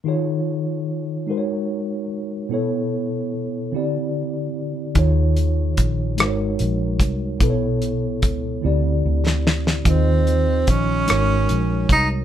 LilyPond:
<<
  \new Staff \with { instrumentName = "Tine electric piano" } { \time 6/8 \key aes \mixolydian \tempo 4. = 49 <ees ees' f' aes' des''>4 r8 <aes ees' ges' bes' c'' des''>4 r8 | <b, b e' a' cis''>4 r8 <d c' e' g' d''>4 r8 | <ees ees' f' aes' des''>4 r8 <aes ees' ges' bes' c'' des''>4 r8 | <b, b e' a' b' cis''>4 r8 <d c' e' g' d''>4 r8 |
<ees ees' f' aes' ees''>4 r8 <aes ees' ges' bes' des''>4 r8 | }
  \new Staff \with { instrumentName = "Tenor saxophone" } { \time 6/8 \key aes \mixolydian r2. | r2. | r2. | r2. |
c'4 des'4. ees'8 | }
  \new Staff \with { instrumentName = "Fingered electric bass" } { \clef bass \time 6/8 \key aes \mixolydian r2. | r2. | ees,4 bes,,8 aes,,8 bes,,8 c,8 | b,,4 cis,8 d,8 d,4 |
ees,4 bes,,8 aes,,8 bes,,8 c,8 | }
  \new DrumStaff \with { instrumentName = "Drums" } \drummode { \time 6/8 r4. r4. | r4. r4. | <hh bd>8 hh8 <hh bd>8 <hh ss>8 hh8 <hh bd>8 | <hh bd>8 hh8 <hh bd>8 r8. sn16 sn16 sn16 |
<hh bd>8 hh8 <hh bd>8 <hh ss>8 hh8 <hh bd>8 | }
>>